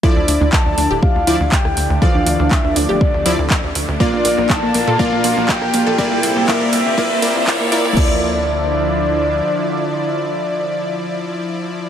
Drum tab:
CC |----------------|----------------|----------------|----------------|
HH |--o---o---o---o-|--o---o---o---o-|--o---o---o---o-|--o---o---o---o-|
CP |----x-------x---|----x-------x---|----x-------x---|----x-------x---|
SD |-------------r--|----------------|-------------r--|----------------|
BD |o---o---o---o---|o---o---o---o---|o---o---o---o---|o---o---o---o---|

CC |x---------------|----------------|
HH |----------------|----------------|
CP |----------------|----------------|
SD |----------------|----------------|
BD |o---------------|----------------|